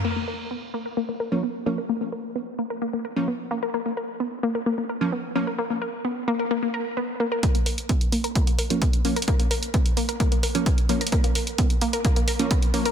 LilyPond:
<<
  \new Staff \with { instrumentName = "Synth arpeggio sound" } { \time 4/4 \key bes \phrygian \tempo 4 = 130 bes16 bes16 bes'16 r16 ces'16 r16 bes16 bes'16 bes16 bes16 bes'16 r16 ces'16 r16 bes16 bes'16 | bes16 bes16 bes'16 r16 ces'16 r16 bes16 bes'16 bes16 bes16 bes'16 r16 ces'16 r16 bes16 bes'16 | bes16 bes16 bes'16 r16 ces'16 r16 bes16 bes'16 bes16 bes16 bes'16 r16 ces'16 r16 bes16 bes'16 | bes16 bes16 bes'16 r16 ces'16 r16 bes16 bes'16 bes16 bes16 bes'16 r16 ces'16 r16 bes16 bes'16 |
bes16 bes16 bes'16 r16 ces'16 r16 bes16 bes'16 bes16 bes16 bes'16 r16 ces'16 r16 bes16 bes'16 | bes16 bes16 bes'16 r16 ces'16 r16 bes16 bes'16 bes16 bes16 bes'16 r16 ces'16 r16 bes16 bes'16 | bes16 bes16 bes'16 r16 ces'16 r16 bes16 bes'16 bes16 bes16 bes'16 r16 ces'16 r16 bes16 bes'16 | }
  \new Staff \with { instrumentName = "Synth stab" } { \time 4/4 \key bes \phrygian r2 r8. <f bes des'>16 r8 <f bes des'>16 r16 | r2 r8. <f bes des'>16 r4 | r2 r8. <f bes des'>16 r8 <f bes des'>16 r16 | r1 |
r2 r8. <f bes des'>16 r8 <f bes des'>16 r16 | r2 r8. <f bes des'>16 r8 <f bes des'>16 r16 | r2 r8. <f bes des'>16 r8 <f bes des'>16 r16 | }
  \new DrumStaff \with { instrumentName = "Drums" } \drummode { \time 4/4 cymc4 r4 r4 r4 | r4 r4 r4 r4 | r4 r4 r4 r4 | r4 r4 r4 r4 |
<hh bd>16 hh16 hho16 hh16 <hh bd>16 hh16 hho16 hh16 <hh bd>16 hh16 hho16 hh16 <hh bd>16 hh16 hho16 hh32 hh32 | <hh bd>16 hh16 hho16 hh16 <hh bd>16 hh16 hho16 hh16 <hh bd>16 hh16 hho16 hh16 <hh bd>16 hh16 hho16 hh32 hh32 | <hh bd>16 hh16 hho16 hh16 <hh bd>16 hh16 hho16 hh16 <hh bd>16 hh16 hho16 hh16 <hh bd>16 hh16 hho16 hh16 | }
>>